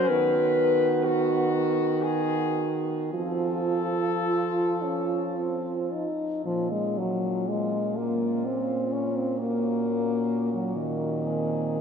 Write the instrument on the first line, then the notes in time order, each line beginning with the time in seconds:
french horn
Already playing: C#4 F#4
0.07 D#3 B3 B4
1.04 F#4
2.03 G#4
3.13 F3 C4 F4 A4
4.27 F4
4.82 C#4
5.37 C4
5.92 D#4
6.45 A#2 F3 C#4 F4
6.71 G#3
6.98 F#3
7.49 G#3
7.97 A#3
8.45 C4
8.92 C#4
9.16 C4
9.39 A#3 F#4
10.53 F#3
10.76 D#3
11.23 C4 G#4